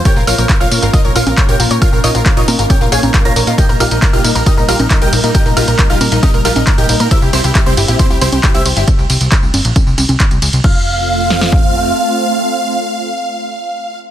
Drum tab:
CC |----------------|----------------|----------------|----------------|
RD |----------------|----------------|x-x-x-x-x-x-x-x-|x-x-x-x-x-x-x-x-|
HH |x-oxx-oxx-oxxxox|x-oxxxoxx-oxxxox|x-oxx-oxx-oxxxox|x-oxx-oxx-oxxxox|
TB |xxxxxxxxxxxxxxxx|xxxxxxxxxxxxxxxx|xxxxxxxxxxxxxxxx|xxxxxxxxxxxxxxxx|
CP |----x-------x---|----x-------x---|----x-------x---|----x-------x---|
SD |----------------|----------------|----------------|----------------|
CG |-----------o----|------o-o--o----|-----------o----|------o-o--o----|
BD |o---o---o---o---|o---o---o---o---|o---o---o---o---|o---o---o---o---|

CC |----------------|----------------|x---------------|----------------|
RD |x-x-x-x-x-x-x-x-|x-x-x-x-x-x-x-x-|----------------|----------------|
HH |x-oxx-oxx-oxxxox|x-oxx-oxx-oxxxox|----------------|----------------|
TB |xxxxxxxxxxxxxxxx|xxxxxxxxxxxxxxxx|----------------|----------------|
CP |----x-------x---|----x-------x---|----------------|----------------|
SD |----------------|----------------|------oo--------|----------------|
CG |-----------o----|------o-o-oo----|----------------|----------------|
BD |o---o---o---o---|o---o---o---o---|o-------o-------|----------------|